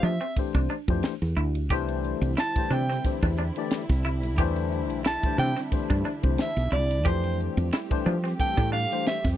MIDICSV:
0, 0, Header, 1, 8, 480
1, 0, Start_track
1, 0, Key_signature, 0, "major"
1, 0, Tempo, 669643
1, 1221, Time_signature, 4, 2, 24, 8
1, 6717, End_track
2, 0, Start_track
2, 0, Title_t, "Soprano saxophone"
2, 0, Program_c, 0, 64
2, 32, Note_on_c, 0, 76, 82
2, 266, Note_off_c, 0, 76, 0
2, 1717, Note_on_c, 0, 81, 98
2, 1954, Note_on_c, 0, 79, 83
2, 1965, Note_off_c, 0, 81, 0
2, 2187, Note_off_c, 0, 79, 0
2, 3633, Note_on_c, 0, 81, 95
2, 3850, Note_off_c, 0, 81, 0
2, 3866, Note_on_c, 0, 79, 99
2, 4008, Note_off_c, 0, 79, 0
2, 4596, Note_on_c, 0, 76, 84
2, 4812, Note_off_c, 0, 76, 0
2, 4823, Note_on_c, 0, 74, 100
2, 5067, Note_on_c, 0, 72, 84
2, 5078, Note_off_c, 0, 74, 0
2, 5304, Note_off_c, 0, 72, 0
2, 6022, Note_on_c, 0, 79, 99
2, 6244, Note_off_c, 0, 79, 0
2, 6256, Note_on_c, 0, 77, 95
2, 6480, Note_off_c, 0, 77, 0
2, 6506, Note_on_c, 0, 76, 84
2, 6647, Note_off_c, 0, 76, 0
2, 6717, End_track
3, 0, Start_track
3, 0, Title_t, "Tine electric piano"
3, 0, Program_c, 1, 4
3, 0, Note_on_c, 1, 52, 72
3, 0, Note_on_c, 1, 57, 70
3, 0, Note_on_c, 1, 62, 66
3, 0, Note_on_c, 1, 67, 73
3, 0, Note_on_c, 1, 72, 78
3, 78, Note_off_c, 1, 52, 0
3, 81, Note_off_c, 1, 57, 0
3, 82, Note_off_c, 1, 62, 0
3, 82, Note_off_c, 1, 67, 0
3, 85, Note_off_c, 1, 72, 0
3, 162, Note_on_c, 1, 67, 26
3, 169, Note_on_c, 1, 72, 29
3, 209, Note_off_c, 1, 67, 0
3, 213, Note_off_c, 1, 72, 0
3, 268, Note_on_c, 1, 52, 65
3, 270, Note_on_c, 1, 57, 66
3, 272, Note_on_c, 1, 62, 61
3, 274, Note_on_c, 1, 67, 61
3, 280, Note_on_c, 1, 72, 76
3, 527, Note_off_c, 1, 52, 0
3, 528, Note_off_c, 1, 57, 0
3, 529, Note_off_c, 1, 62, 0
3, 530, Note_off_c, 1, 67, 0
3, 533, Note_off_c, 1, 72, 0
3, 639, Note_on_c, 1, 52, 80
3, 640, Note_on_c, 1, 62, 73
3, 641, Note_on_c, 1, 57, 72
3, 643, Note_on_c, 1, 67, 75
3, 648, Note_on_c, 1, 72, 88
3, 803, Note_off_c, 1, 52, 0
3, 804, Note_off_c, 1, 57, 0
3, 804, Note_off_c, 1, 62, 0
3, 805, Note_off_c, 1, 67, 0
3, 807, Note_off_c, 1, 72, 0
3, 878, Note_on_c, 1, 67, 29
3, 889, Note_on_c, 1, 69, 30
3, 927, Note_off_c, 1, 67, 0
3, 932, Note_off_c, 1, 69, 0
3, 1114, Note_on_c, 1, 67, 34
3, 1125, Note_on_c, 1, 74, 38
3, 1165, Note_off_c, 1, 67, 0
3, 1171, Note_off_c, 1, 74, 0
3, 1226, Note_on_c, 1, 52, 99
3, 1227, Note_on_c, 1, 62, 93
3, 1228, Note_on_c, 1, 57, 93
3, 1231, Note_on_c, 1, 67, 90
3, 1233, Note_on_c, 1, 72, 114
3, 1662, Note_off_c, 1, 52, 0
3, 1663, Note_off_c, 1, 57, 0
3, 1663, Note_off_c, 1, 62, 0
3, 1665, Note_off_c, 1, 67, 0
3, 1666, Note_off_c, 1, 72, 0
3, 1838, Note_on_c, 1, 52, 77
3, 1841, Note_on_c, 1, 57, 66
3, 1842, Note_on_c, 1, 62, 66
3, 1844, Note_on_c, 1, 67, 67
3, 1848, Note_on_c, 1, 72, 84
3, 2003, Note_off_c, 1, 52, 0
3, 2004, Note_off_c, 1, 57, 0
3, 2005, Note_off_c, 1, 62, 0
3, 2006, Note_off_c, 1, 67, 0
3, 2008, Note_off_c, 1, 72, 0
3, 2086, Note_on_c, 1, 67, 25
3, 2094, Note_on_c, 1, 71, 29
3, 2131, Note_off_c, 1, 67, 0
3, 2135, Note_off_c, 1, 71, 0
3, 2181, Note_on_c, 1, 52, 69
3, 2186, Note_on_c, 1, 57, 63
3, 2188, Note_on_c, 1, 62, 66
3, 2192, Note_on_c, 1, 67, 65
3, 2193, Note_on_c, 1, 72, 71
3, 2443, Note_off_c, 1, 52, 0
3, 2446, Note_off_c, 1, 57, 0
3, 2447, Note_off_c, 1, 62, 0
3, 2449, Note_off_c, 1, 67, 0
3, 2450, Note_off_c, 1, 72, 0
3, 2555, Note_on_c, 1, 52, 77
3, 2561, Note_on_c, 1, 57, 77
3, 2565, Note_on_c, 1, 62, 78
3, 2568, Note_on_c, 1, 67, 73
3, 2570, Note_on_c, 1, 74, 89
3, 2721, Note_off_c, 1, 52, 0
3, 2724, Note_off_c, 1, 57, 0
3, 2726, Note_off_c, 1, 62, 0
3, 2728, Note_off_c, 1, 67, 0
3, 2729, Note_off_c, 1, 74, 0
3, 2798, Note_on_c, 1, 67, 29
3, 2810, Note_on_c, 1, 69, 36
3, 2847, Note_off_c, 1, 67, 0
3, 2853, Note_off_c, 1, 69, 0
3, 3040, Note_on_c, 1, 67, 35
3, 3052, Note_on_c, 1, 72, 36
3, 3088, Note_off_c, 1, 67, 0
3, 3094, Note_off_c, 1, 72, 0
3, 3146, Note_on_c, 1, 52, 110
3, 3151, Note_on_c, 1, 62, 97
3, 3153, Note_on_c, 1, 57, 94
3, 3157, Note_on_c, 1, 67, 101
3, 3157, Note_on_c, 1, 72, 111
3, 3582, Note_off_c, 1, 52, 0
3, 3585, Note_off_c, 1, 57, 0
3, 3585, Note_off_c, 1, 62, 0
3, 3587, Note_off_c, 1, 67, 0
3, 3587, Note_off_c, 1, 72, 0
3, 3759, Note_on_c, 1, 52, 78
3, 3760, Note_on_c, 1, 57, 66
3, 3767, Note_on_c, 1, 62, 68
3, 3768, Note_on_c, 1, 72, 83
3, 3769, Note_on_c, 1, 67, 70
3, 3923, Note_off_c, 1, 52, 0
3, 3924, Note_off_c, 1, 57, 0
3, 3927, Note_off_c, 1, 62, 0
3, 3927, Note_off_c, 1, 72, 0
3, 3928, Note_off_c, 1, 67, 0
3, 4007, Note_on_c, 1, 72, 29
3, 4052, Note_off_c, 1, 72, 0
3, 4095, Note_on_c, 1, 52, 71
3, 4100, Note_on_c, 1, 57, 67
3, 4102, Note_on_c, 1, 62, 65
3, 4104, Note_on_c, 1, 67, 69
3, 4108, Note_on_c, 1, 72, 79
3, 4360, Note_off_c, 1, 52, 0
3, 4363, Note_off_c, 1, 57, 0
3, 4364, Note_off_c, 1, 62, 0
3, 4365, Note_off_c, 1, 67, 0
3, 4367, Note_off_c, 1, 72, 0
3, 4462, Note_on_c, 1, 52, 68
3, 4465, Note_on_c, 1, 57, 68
3, 4470, Note_on_c, 1, 62, 66
3, 4471, Note_on_c, 1, 67, 63
3, 4471, Note_on_c, 1, 72, 76
3, 4635, Note_off_c, 1, 52, 0
3, 4636, Note_off_c, 1, 57, 0
3, 4638, Note_off_c, 1, 62, 0
3, 4639, Note_off_c, 1, 67, 0
3, 4639, Note_off_c, 1, 72, 0
3, 4706, Note_on_c, 1, 67, 25
3, 4717, Note_on_c, 1, 71, 29
3, 4761, Note_off_c, 1, 67, 0
3, 4767, Note_off_c, 1, 71, 0
3, 4950, Note_on_c, 1, 67, 30
3, 4956, Note_on_c, 1, 72, 32
3, 5003, Note_off_c, 1, 67, 0
3, 5006, Note_off_c, 1, 72, 0
3, 5048, Note_on_c, 1, 52, 85
3, 5054, Note_on_c, 1, 57, 74
3, 5054, Note_on_c, 1, 62, 75
3, 5060, Note_on_c, 1, 72, 102
3, 5062, Note_on_c, 1, 67, 80
3, 5492, Note_off_c, 1, 52, 0
3, 5495, Note_off_c, 1, 62, 0
3, 5496, Note_off_c, 1, 57, 0
3, 5498, Note_off_c, 1, 72, 0
3, 5499, Note_off_c, 1, 67, 0
3, 5667, Note_on_c, 1, 52, 90
3, 5668, Note_on_c, 1, 57, 86
3, 5672, Note_on_c, 1, 62, 84
3, 5674, Note_on_c, 1, 67, 87
3, 5677, Note_on_c, 1, 72, 108
3, 5836, Note_off_c, 1, 52, 0
3, 5837, Note_off_c, 1, 57, 0
3, 5839, Note_off_c, 1, 62, 0
3, 5840, Note_off_c, 1, 67, 0
3, 5842, Note_off_c, 1, 72, 0
3, 5911, Note_on_c, 1, 67, 27
3, 5917, Note_on_c, 1, 71, 31
3, 5963, Note_off_c, 1, 67, 0
3, 5966, Note_off_c, 1, 71, 0
3, 6016, Note_on_c, 1, 52, 69
3, 6021, Note_on_c, 1, 57, 67
3, 6022, Note_on_c, 1, 62, 64
3, 6022, Note_on_c, 1, 67, 67
3, 6029, Note_on_c, 1, 69, 79
3, 6280, Note_off_c, 1, 52, 0
3, 6283, Note_off_c, 1, 57, 0
3, 6283, Note_off_c, 1, 62, 0
3, 6283, Note_off_c, 1, 67, 0
3, 6286, Note_off_c, 1, 69, 0
3, 6390, Note_on_c, 1, 52, 65
3, 6395, Note_on_c, 1, 57, 61
3, 6398, Note_on_c, 1, 62, 68
3, 6399, Note_on_c, 1, 67, 64
3, 6400, Note_on_c, 1, 72, 82
3, 6558, Note_off_c, 1, 52, 0
3, 6560, Note_off_c, 1, 57, 0
3, 6561, Note_off_c, 1, 62, 0
3, 6562, Note_off_c, 1, 67, 0
3, 6562, Note_off_c, 1, 72, 0
3, 6635, Note_on_c, 1, 67, 26
3, 6643, Note_on_c, 1, 71, 30
3, 6685, Note_off_c, 1, 67, 0
3, 6689, Note_off_c, 1, 71, 0
3, 6717, End_track
4, 0, Start_track
4, 0, Title_t, "Clean electric guitar"
4, 0, Program_c, 2, 27
4, 22, Note_on_c, 2, 62, 69
4, 121, Note_off_c, 2, 62, 0
4, 149, Note_on_c, 2, 60, 59
4, 333, Note_off_c, 2, 60, 0
4, 392, Note_on_c, 2, 62, 68
4, 475, Note_off_c, 2, 62, 0
4, 501, Note_on_c, 2, 62, 75
4, 684, Note_off_c, 2, 62, 0
4, 979, Note_on_c, 2, 64, 69
4, 1163, Note_off_c, 2, 64, 0
4, 1221, Note_on_c, 2, 67, 91
4, 1404, Note_off_c, 2, 67, 0
4, 1699, Note_on_c, 2, 64, 70
4, 1883, Note_off_c, 2, 64, 0
4, 1939, Note_on_c, 2, 62, 72
4, 2040, Note_off_c, 2, 62, 0
4, 2075, Note_on_c, 2, 60, 63
4, 2257, Note_off_c, 2, 60, 0
4, 2315, Note_on_c, 2, 62, 73
4, 2397, Note_off_c, 2, 62, 0
4, 2426, Note_on_c, 2, 62, 75
4, 2607, Note_off_c, 2, 62, 0
4, 2902, Note_on_c, 2, 64, 71
4, 3084, Note_off_c, 2, 64, 0
4, 3140, Note_on_c, 2, 67, 83
4, 3323, Note_off_c, 2, 67, 0
4, 3617, Note_on_c, 2, 64, 77
4, 3801, Note_off_c, 2, 64, 0
4, 3858, Note_on_c, 2, 62, 67
4, 3959, Note_off_c, 2, 62, 0
4, 3989, Note_on_c, 2, 60, 61
4, 4173, Note_off_c, 2, 60, 0
4, 4228, Note_on_c, 2, 62, 66
4, 4312, Note_off_c, 2, 62, 0
4, 4338, Note_on_c, 2, 62, 80
4, 4522, Note_off_c, 2, 62, 0
4, 4817, Note_on_c, 2, 64, 75
4, 5001, Note_off_c, 2, 64, 0
4, 5053, Note_on_c, 2, 67, 90
4, 5238, Note_off_c, 2, 67, 0
4, 5541, Note_on_c, 2, 64, 73
4, 5723, Note_off_c, 2, 64, 0
4, 5778, Note_on_c, 2, 62, 73
4, 5878, Note_off_c, 2, 62, 0
4, 5905, Note_on_c, 2, 60, 59
4, 6090, Note_off_c, 2, 60, 0
4, 6146, Note_on_c, 2, 62, 74
4, 6230, Note_off_c, 2, 62, 0
4, 6251, Note_on_c, 2, 62, 81
4, 6437, Note_off_c, 2, 62, 0
4, 6717, End_track
5, 0, Start_track
5, 0, Title_t, "String section"
5, 0, Program_c, 3, 48
5, 1215, Note_on_c, 3, 55, 61
5, 1216, Note_on_c, 3, 50, 68
5, 1218, Note_on_c, 3, 64, 81
5, 1220, Note_on_c, 3, 60, 66
5, 3121, Note_off_c, 3, 60, 0
5, 3144, Note_on_c, 3, 62, 67
5, 5029, Note_off_c, 3, 50, 0
5, 5029, Note_off_c, 3, 55, 0
5, 5030, Note_off_c, 3, 64, 0
5, 5042, Note_off_c, 3, 62, 0
5, 5061, Note_on_c, 3, 57, 65
5, 5065, Note_on_c, 3, 67, 72
5, 5066, Note_on_c, 3, 55, 69
5, 5066, Note_on_c, 3, 60, 64
5, 6717, Note_off_c, 3, 55, 0
5, 6717, Note_off_c, 3, 57, 0
5, 6717, Note_off_c, 3, 60, 0
5, 6717, Note_off_c, 3, 67, 0
5, 6717, End_track
6, 0, Start_track
6, 0, Title_t, "Fretless electric bass"
6, 0, Program_c, 4, 35
6, 21, Note_on_c, 4, 53, 84
6, 127, Note_off_c, 4, 53, 0
6, 390, Note_on_c, 4, 36, 85
6, 479, Note_off_c, 4, 36, 0
6, 630, Note_on_c, 4, 41, 74
6, 720, Note_off_c, 4, 41, 0
6, 873, Note_on_c, 4, 40, 76
6, 961, Note_off_c, 4, 40, 0
6, 980, Note_on_c, 4, 38, 92
6, 1222, Note_off_c, 4, 38, 0
6, 1222, Note_on_c, 4, 36, 94
6, 1524, Note_off_c, 4, 36, 0
6, 1588, Note_on_c, 4, 36, 84
6, 1678, Note_off_c, 4, 36, 0
6, 1939, Note_on_c, 4, 48, 81
6, 2135, Note_off_c, 4, 48, 0
6, 2312, Note_on_c, 4, 40, 78
6, 2507, Note_off_c, 4, 40, 0
6, 2791, Note_on_c, 4, 36, 85
6, 3025, Note_off_c, 4, 36, 0
6, 3025, Note_on_c, 4, 35, 96
6, 3141, Note_off_c, 4, 35, 0
6, 3141, Note_on_c, 4, 40, 83
6, 3509, Note_off_c, 4, 40, 0
6, 3509, Note_on_c, 4, 35, 82
6, 3706, Note_off_c, 4, 35, 0
6, 3858, Note_on_c, 4, 48, 86
6, 3965, Note_off_c, 4, 48, 0
6, 4231, Note_on_c, 4, 43, 84
6, 4320, Note_off_c, 4, 43, 0
6, 4468, Note_on_c, 4, 36, 75
6, 4558, Note_off_c, 4, 36, 0
6, 4706, Note_on_c, 4, 35, 76
6, 4797, Note_off_c, 4, 35, 0
6, 4815, Note_on_c, 4, 36, 93
6, 5057, Note_off_c, 4, 36, 0
6, 5057, Note_on_c, 4, 41, 100
6, 5360, Note_off_c, 4, 41, 0
6, 5428, Note_on_c, 4, 41, 89
6, 5518, Note_off_c, 4, 41, 0
6, 5779, Note_on_c, 4, 53, 85
6, 5975, Note_off_c, 4, 53, 0
6, 6147, Note_on_c, 4, 45, 85
6, 6343, Note_off_c, 4, 45, 0
6, 6625, Note_on_c, 4, 41, 89
6, 6717, Note_off_c, 4, 41, 0
6, 6717, End_track
7, 0, Start_track
7, 0, Title_t, "Muted fretless electric bass strokes"
7, 261, Note_on_c, 9, 29, 31
7, 332, Note_off_c, 9, 29, 0
7, 1834, Note_on_c, 9, 29, 32
7, 1906, Note_off_c, 9, 29, 0
7, 3750, Note_on_c, 9, 29, 34
7, 3821, Note_off_c, 9, 29, 0
7, 4100, Note_on_c, 9, 29, 33
7, 4172, Note_off_c, 9, 29, 0
7, 5667, Note_on_c, 9, 29, 37
7, 5739, Note_off_c, 9, 29, 0
7, 6717, End_track
8, 0, Start_track
8, 0, Title_t, "Drums"
8, 20, Note_on_c, 9, 44, 78
8, 92, Note_off_c, 9, 44, 0
8, 152, Note_on_c, 9, 51, 58
8, 224, Note_off_c, 9, 51, 0
8, 261, Note_on_c, 9, 36, 75
8, 262, Note_on_c, 9, 44, 83
8, 262, Note_on_c, 9, 51, 76
8, 333, Note_off_c, 9, 36, 0
8, 333, Note_off_c, 9, 44, 0
8, 333, Note_off_c, 9, 51, 0
8, 390, Note_on_c, 9, 51, 53
8, 392, Note_on_c, 9, 36, 74
8, 462, Note_off_c, 9, 51, 0
8, 464, Note_off_c, 9, 36, 0
8, 499, Note_on_c, 9, 44, 84
8, 571, Note_off_c, 9, 44, 0
8, 630, Note_on_c, 9, 51, 55
8, 632, Note_on_c, 9, 36, 74
8, 702, Note_off_c, 9, 51, 0
8, 703, Note_off_c, 9, 36, 0
8, 737, Note_on_c, 9, 44, 90
8, 737, Note_on_c, 9, 51, 86
8, 744, Note_on_c, 9, 38, 115
8, 808, Note_off_c, 9, 44, 0
8, 808, Note_off_c, 9, 51, 0
8, 816, Note_off_c, 9, 38, 0
8, 872, Note_on_c, 9, 51, 62
8, 879, Note_on_c, 9, 38, 35
8, 944, Note_off_c, 9, 51, 0
8, 951, Note_off_c, 9, 38, 0
8, 979, Note_on_c, 9, 44, 80
8, 1050, Note_off_c, 9, 44, 0
8, 1110, Note_on_c, 9, 51, 57
8, 1182, Note_off_c, 9, 51, 0
8, 1218, Note_on_c, 9, 44, 78
8, 1218, Note_on_c, 9, 51, 72
8, 1221, Note_on_c, 9, 36, 92
8, 1289, Note_off_c, 9, 44, 0
8, 1289, Note_off_c, 9, 51, 0
8, 1293, Note_off_c, 9, 36, 0
8, 1350, Note_on_c, 9, 51, 58
8, 1422, Note_off_c, 9, 51, 0
8, 1459, Note_on_c, 9, 44, 88
8, 1531, Note_off_c, 9, 44, 0
8, 1593, Note_on_c, 9, 51, 64
8, 1665, Note_off_c, 9, 51, 0
8, 1700, Note_on_c, 9, 44, 86
8, 1700, Note_on_c, 9, 51, 78
8, 1708, Note_on_c, 9, 38, 112
8, 1772, Note_off_c, 9, 44, 0
8, 1772, Note_off_c, 9, 51, 0
8, 1779, Note_off_c, 9, 38, 0
8, 1833, Note_on_c, 9, 51, 59
8, 1834, Note_on_c, 9, 36, 81
8, 1905, Note_off_c, 9, 36, 0
8, 1905, Note_off_c, 9, 51, 0
8, 1944, Note_on_c, 9, 44, 79
8, 2016, Note_off_c, 9, 44, 0
8, 2077, Note_on_c, 9, 51, 64
8, 2085, Note_on_c, 9, 38, 32
8, 2149, Note_off_c, 9, 51, 0
8, 2156, Note_off_c, 9, 38, 0
8, 2182, Note_on_c, 9, 44, 74
8, 2182, Note_on_c, 9, 51, 84
8, 2183, Note_on_c, 9, 36, 70
8, 2253, Note_off_c, 9, 44, 0
8, 2253, Note_off_c, 9, 51, 0
8, 2254, Note_off_c, 9, 36, 0
8, 2310, Note_on_c, 9, 51, 64
8, 2312, Note_on_c, 9, 36, 71
8, 2382, Note_off_c, 9, 51, 0
8, 2384, Note_off_c, 9, 36, 0
8, 2416, Note_on_c, 9, 44, 82
8, 2487, Note_off_c, 9, 44, 0
8, 2549, Note_on_c, 9, 51, 62
8, 2621, Note_off_c, 9, 51, 0
8, 2656, Note_on_c, 9, 44, 86
8, 2656, Note_on_c, 9, 51, 86
8, 2663, Note_on_c, 9, 38, 107
8, 2728, Note_off_c, 9, 44, 0
8, 2728, Note_off_c, 9, 51, 0
8, 2735, Note_off_c, 9, 38, 0
8, 2792, Note_on_c, 9, 36, 81
8, 2793, Note_on_c, 9, 51, 60
8, 2800, Note_on_c, 9, 38, 31
8, 2864, Note_off_c, 9, 36, 0
8, 2865, Note_off_c, 9, 51, 0
8, 2872, Note_off_c, 9, 38, 0
8, 2900, Note_on_c, 9, 44, 83
8, 2972, Note_off_c, 9, 44, 0
8, 3033, Note_on_c, 9, 51, 65
8, 3105, Note_off_c, 9, 51, 0
8, 3142, Note_on_c, 9, 36, 94
8, 3142, Note_on_c, 9, 44, 81
8, 3142, Note_on_c, 9, 51, 75
8, 3213, Note_off_c, 9, 36, 0
8, 3213, Note_off_c, 9, 44, 0
8, 3213, Note_off_c, 9, 51, 0
8, 3269, Note_on_c, 9, 51, 50
8, 3340, Note_off_c, 9, 51, 0
8, 3380, Note_on_c, 9, 44, 88
8, 3451, Note_off_c, 9, 44, 0
8, 3511, Note_on_c, 9, 51, 58
8, 3583, Note_off_c, 9, 51, 0
8, 3619, Note_on_c, 9, 44, 80
8, 3619, Note_on_c, 9, 51, 76
8, 3626, Note_on_c, 9, 38, 117
8, 3691, Note_off_c, 9, 44, 0
8, 3691, Note_off_c, 9, 51, 0
8, 3698, Note_off_c, 9, 38, 0
8, 3751, Note_on_c, 9, 51, 57
8, 3752, Note_on_c, 9, 36, 87
8, 3822, Note_off_c, 9, 51, 0
8, 3823, Note_off_c, 9, 36, 0
8, 3860, Note_on_c, 9, 44, 76
8, 3932, Note_off_c, 9, 44, 0
8, 3992, Note_on_c, 9, 51, 59
8, 3999, Note_on_c, 9, 38, 30
8, 4064, Note_off_c, 9, 51, 0
8, 4071, Note_off_c, 9, 38, 0
8, 4099, Note_on_c, 9, 44, 85
8, 4099, Note_on_c, 9, 51, 77
8, 4100, Note_on_c, 9, 36, 74
8, 4171, Note_off_c, 9, 36, 0
8, 4171, Note_off_c, 9, 44, 0
8, 4171, Note_off_c, 9, 51, 0
8, 4229, Note_on_c, 9, 51, 58
8, 4231, Note_on_c, 9, 36, 73
8, 4301, Note_off_c, 9, 51, 0
8, 4302, Note_off_c, 9, 36, 0
8, 4337, Note_on_c, 9, 44, 88
8, 4408, Note_off_c, 9, 44, 0
8, 4466, Note_on_c, 9, 51, 58
8, 4470, Note_on_c, 9, 36, 70
8, 4537, Note_off_c, 9, 51, 0
8, 4541, Note_off_c, 9, 36, 0
8, 4574, Note_on_c, 9, 44, 90
8, 4574, Note_on_c, 9, 51, 78
8, 4582, Note_on_c, 9, 38, 116
8, 4646, Note_off_c, 9, 44, 0
8, 4646, Note_off_c, 9, 51, 0
8, 4653, Note_off_c, 9, 38, 0
8, 4707, Note_on_c, 9, 51, 60
8, 4715, Note_on_c, 9, 38, 33
8, 4779, Note_off_c, 9, 51, 0
8, 4786, Note_off_c, 9, 38, 0
8, 4812, Note_on_c, 9, 44, 76
8, 4884, Note_off_c, 9, 44, 0
8, 4950, Note_on_c, 9, 51, 59
8, 5022, Note_off_c, 9, 51, 0
8, 5054, Note_on_c, 9, 44, 72
8, 5054, Note_on_c, 9, 51, 73
8, 5057, Note_on_c, 9, 36, 90
8, 5126, Note_off_c, 9, 44, 0
8, 5126, Note_off_c, 9, 51, 0
8, 5129, Note_off_c, 9, 36, 0
8, 5188, Note_on_c, 9, 51, 57
8, 5260, Note_off_c, 9, 51, 0
8, 5300, Note_on_c, 9, 44, 90
8, 5371, Note_off_c, 9, 44, 0
8, 5431, Note_on_c, 9, 51, 65
8, 5503, Note_off_c, 9, 51, 0
8, 5537, Note_on_c, 9, 44, 89
8, 5537, Note_on_c, 9, 51, 88
8, 5544, Note_on_c, 9, 38, 111
8, 5609, Note_off_c, 9, 44, 0
8, 5609, Note_off_c, 9, 51, 0
8, 5616, Note_off_c, 9, 38, 0
8, 5668, Note_on_c, 9, 51, 60
8, 5669, Note_on_c, 9, 36, 86
8, 5740, Note_off_c, 9, 51, 0
8, 5741, Note_off_c, 9, 36, 0
8, 5781, Note_on_c, 9, 44, 86
8, 5853, Note_off_c, 9, 44, 0
8, 5913, Note_on_c, 9, 51, 64
8, 5921, Note_on_c, 9, 38, 31
8, 5985, Note_off_c, 9, 51, 0
8, 5992, Note_off_c, 9, 38, 0
8, 6018, Note_on_c, 9, 36, 69
8, 6019, Note_on_c, 9, 44, 82
8, 6019, Note_on_c, 9, 51, 82
8, 6090, Note_off_c, 9, 36, 0
8, 6091, Note_off_c, 9, 44, 0
8, 6091, Note_off_c, 9, 51, 0
8, 6145, Note_on_c, 9, 51, 62
8, 6147, Note_on_c, 9, 36, 72
8, 6217, Note_off_c, 9, 51, 0
8, 6219, Note_off_c, 9, 36, 0
8, 6255, Note_on_c, 9, 44, 86
8, 6327, Note_off_c, 9, 44, 0
8, 6392, Note_on_c, 9, 51, 66
8, 6463, Note_off_c, 9, 51, 0
8, 6496, Note_on_c, 9, 44, 93
8, 6496, Note_on_c, 9, 51, 88
8, 6503, Note_on_c, 9, 38, 113
8, 6568, Note_off_c, 9, 44, 0
8, 6568, Note_off_c, 9, 51, 0
8, 6575, Note_off_c, 9, 38, 0
8, 6629, Note_on_c, 9, 36, 86
8, 6630, Note_on_c, 9, 51, 67
8, 6637, Note_on_c, 9, 38, 32
8, 6700, Note_off_c, 9, 36, 0
8, 6702, Note_off_c, 9, 51, 0
8, 6709, Note_off_c, 9, 38, 0
8, 6717, End_track
0, 0, End_of_file